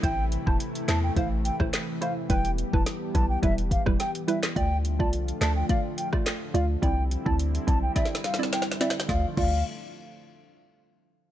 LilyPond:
<<
  \new Staff \with { instrumentName = "Flute" } { \time 4/4 \key d \dorian \tempo 4 = 106 g''8 r16 a''16 r8 a''16 g''16 f''16 r16 g''16 r8. f''16 r16 | g''8 r16 a''16 r8 a''16 g''16 e''16 r16 f''16 r16 g''16 r16 e''16 r16 | g''8 r16 a''16 r8 a''16 g''16 f''16 r16 g''16 r8. f''16 r16 | g''8 r16 a''16 r8 a''16 g''16 e''16 r16 f''16 r16 g''16 r16 e''16 r16 |
f''8 f''8 r2. | }
  \new Staff \with { instrumentName = "Synth pluck" } { \time 4/4 \key d \dorian <a e' c''>8. <a e' c''>8. <a e' c''>8 <a e' c''>16 r8 <a e' c''>16 r8 <a e' c''>16 r16 | <g e' b'>8. <g e' b'>8. <g e' b'>8 <g e' b'>16 r8 <g e' b'>16 r8 <g e' b'>16 r16 | <a f' d''>8. <a f' d''>8. <a f' d''>8 <a f' d''>16 r8 <a f' d''>16 r8 <a f' d''>16 r16 | <c' e' d''>8. <c' e' d''>8. <c' e' d''>8 <c' e' d''>16 r8 <c' e' d''>16 r8 <c' e' d''>16 r16 |
<a f' d''>16 r16 <a f' d''>8 r2. | }
  \new Staff \with { instrumentName = "Analog synth pad" } { \time 4/4 \key d \dorian <c e a e'>1 | <g b g'>1 | <d f a f'>1 | <d g c' e'>1 |
<d f a f'>8 r2. r8 | }
  \new Staff \with { instrumentName = "808-style bass" } { \clef bass \time 4/4 \key d \dorian a,,8. e,,16 r8 e,8 a,,8. a,,16 r4 | e,,8. e,,16 r8 b,,8 e,,8. e,,16 r4 | d,8. c,8. d,8 r4. d,8 | c,8. d,8. b,,8 r2 |
d,16 r16 d,8 r2. | }
  \new DrumStaff \with { instrumentName = "Drums" } \drummode { \time 4/4 <hh bd>8 hh16 bd16 hh16 hh16 <hc hh sn>8 <hh bd>8 hh16 <bd ss>16 <hc hh sn>8 hh8 | <hh bd>16 hh16 hh16 bd16 <hh sn>8 <hh bd>8 <hh bd>16 hh16 <hh bd>16 <bd ss>16 <hh sn>16 hh16 hh16 <hc sn>16 | <hh bd>8 hh16 bd16 hh16 hh16 <hc hh sn>8 <hh bd>8 hh16 <bd ss>16 <hc hh sn>8 hh8 | <hh bd>8 hh16 bd16 hh16 hh16 <hh bd>8 \tuplet 3/2 { <hh bd sn>16 sn16 sn16 <hh sn>16 sn16 sn16 <hh sn>16 sn16 sn16 <hh sn>16 sn16 sn16 } |
<bd sn>8 <cymc bd>8 r4 r4 r4 | }
>>